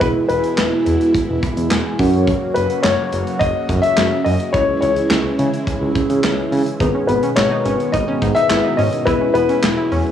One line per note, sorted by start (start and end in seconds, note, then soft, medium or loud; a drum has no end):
0.00 0.12 E1 loud
0.00 1.95 B2 medium
0.00 1.97 E3 medium
0.00 1.95 G#3 medium
0.00 1.95 B3 medium
0.00 1.95 E4 medium
0.00 1.97 E4 medium
0.00 1.95 G#4 medium
0.00 0.06 B4 medium
0.00 1.95 B4 medium
0.00 kick loud
0.00 closed hi-hat medium
0.28 0.40 E1 loud
0.28 1.38 B4 medium
0.28 closed hi-hat medium
0.43 closed hi-hat medium
0.58 0.68 E1 loud
0.58 snare loud
0.58 clap medium
0.58 closed hi-hat medium
0.86 0.97 E2 loud
0.86 closed hi-hat medium
1.00 closed hi-hat soft
1.14 kick medium
1.14 closed hi-hat medium
1.29 1.39 E1 medium
1.43 1.69 B5 medium
1.43 kick medium
1.43 closed hi-hat medium
1.57 1.67 E2 medium
1.57 closed hi-hat medium
1.71 1.81 E1 loud
1.71 1.97 G#5 medium
1.71 snare loud
1.71 clap medium
1.71 closed hi-hat medium
1.99 2.31 F#2 loud
1.99 6.76 C#3 medium
1.99 4.51 F#3 medium
1.99 4.51 A#3 medium
1.99 4.22 C#4 medium
1.99 4.22 F#4 medium
1.99 4.51 F#4 medium
1.99 4.22 A#4 medium
1.99 4.22 C#5 medium
1.99 2.26 F#5 medium
1.99 kick loud
1.99 open hi-hat medium
2.13 closed hi-hat medium
2.28 kick loud
2.28 closed hi-hat medium
2.54 2.66 F#1 loud
2.54 2.84 B4 medium
2.54 closed hi-hat medium
2.70 closed hi-hat medium
2.83 2.95 F#1 loud
2.83 3.42 C#5 medium
2.83 snare loud
2.83 clap medium
2.83 closed hi-hat medium
3.12 3.23 F#1 loud
3.12 closed hi-hat medium
3.27 closed hi-hat soft
3.39 3.51 F#1 loud
3.39 3.84 D#5 loud
3.39 kick medium
3.39 closed hi-hat medium
3.69 3.80 F#2 loud
3.69 kick medium
3.69 closed hi-hat medium
3.82 4.22 E5 loud
3.82 closed hi-hat medium
3.97 4.08 F#1 loud
3.97 snare loud
3.97 clap medium
3.97 closed hi-hat medium
4.24 4.36 F#2 loud
4.24 4.53 C#4 medium
4.24 4.54 F#4 soft
4.24 4.54 A#4 soft
4.24 4.53 C#5 medium
4.24 4.54 D#5 loud
4.24 open hi-hat medium
4.40 closed hi-hat medium
4.53 4.64 C#2 loud
4.53 6.78 E3 medium
4.53 6.78 G#3 medium
4.53 5.93 C#4 medium
4.53 6.78 E4 medium
4.53 5.93 E4 medium
4.53 5.93 G#4 medium
4.53 4.79 C#5 loud
4.53 5.93 C#5 medium
4.53 kick loud
4.53 closed hi-hat medium
4.81 4.93 C#2 loud
4.81 5.91 C#5 medium
4.81 closed hi-hat medium
4.96 closed hi-hat medium
5.11 5.21 C#2 loud
5.11 snare loud
5.11 clap medium
5.11 closed hi-hat medium
5.39 5.49 C#3 loud
5.39 closed hi-hat medium
5.53 closed hi-hat soft
5.67 kick medium
5.67 closed hi-hat medium
5.81 5.92 C#2 loud
5.95 6.80 C#4 medium
5.95 6.80 E4 medium
5.95 6.79 G#4 medium
5.95 6.80 C#5 medium
5.95 kick loud
5.95 closed hi-hat medium
6.10 6.20 C#3 medium
6.10 closed hi-hat medium
6.24 6.34 C#2 loud
6.24 snare loud
6.24 clap medium
6.24 closed hi-hat medium
6.52 6.63 C#3 loud
6.52 open hi-hat medium
6.66 closed hi-hat medium
6.80 6.91 G#1 loud
6.80 10.12 B2 medium
6.80 9.04 D#3 medium
6.80 9.03 D#3 medium
6.80 10.12 G#3 medium
6.80 9.04 B3 medium
6.80 9.03 B3 medium
6.80 6.91 D#4 loud
6.80 9.03 G#4 medium
6.80 9.03 B4 medium
6.80 kick loud
6.80 closed hi-hat medium
6.95 7.05 C#4 medium
7.07 7.19 G#1 loud
7.07 7.19 B3 medium
7.07 7.34 B4 medium
7.07 closed hi-hat medium
7.23 7.44 C#4 medium
7.23 closed hi-hat medium
7.36 7.47 G#1 loud
7.36 7.95 C#5 medium
7.36 snare loud
7.36 clap medium
7.36 closed hi-hat medium
7.51 7.62 D#4 medium
7.65 7.76 G#1 loud
7.65 7.86 C#4 medium
7.65 closed hi-hat medium
7.80 closed hi-hat soft
7.92 8.04 G#1 loud
7.92 8.04 D#4 medium
7.92 8.37 D#5 loud
7.92 kick medium
7.92 closed hi-hat medium
8.08 8.18 C#4 medium
8.22 8.32 G#2 medium
8.22 8.33 D#4 medium
8.22 kick medium
8.22 closed hi-hat medium
8.35 8.47 D#4 medium
8.35 8.79 E5 loud
8.35 closed hi-hat medium
8.50 8.61 G#1 loud
8.50 8.61 E4 medium
8.50 snare loud
8.50 clap medium
8.50 closed hi-hat medium
8.64 8.75 D#4 medium
8.77 8.89 G#2 loud
8.77 9.00 C#4 medium
8.77 9.07 D#5 loud
8.77 open hi-hat medium
8.92 closed hi-hat medium
9.05 9.17 E1 loud
9.05 10.12 E3 medium
9.05 10.12 B3 medium
9.05 10.12 E4 medium
9.05 9.17 E4 medium
9.05 10.12 G#4 medium
9.05 9.32 B4 loud
9.05 10.12 B4 medium
9.05 kick loud
9.05 closed hi-hat medium
9.21 9.32 C#4 medium
9.34 9.46 E1 loud
9.34 9.46 B3 medium
9.34 10.12 B4 loud
9.34 closed hi-hat medium
9.49 9.70 C#4 medium
9.49 closed hi-hat medium
9.63 9.74 E1 loud
9.63 snare loud
9.63 clap loud
9.63 closed hi-hat medium
9.78 9.88 E4 medium
9.92 10.02 E2 loud
9.92 10.12 C#4 medium
9.92 open hi-hat medium
10.06 closed hi-hat soft